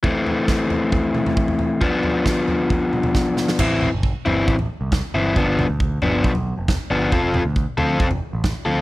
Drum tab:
CC |----------------|----------------|x---------------|----------------|
SD |----o-----------|----o-------o-oo|------------o---|------------o---|
T2 |----------oo----|----------oo----|--o-------------|--o-------------|
FT |o-o---o-o--o-oo-|o-o---o-o--o----|o-o---o--o--o---|o-o---o--o--o---|
BD |o---o---o---o---|o---o---o---o---|o---o---o---o---|o---o---o---o---|

CC |----------------|
SD |------------o---|
T2 |--o-------------|
FT |o-o---o--o--o---|
BD |o---o---o---o---|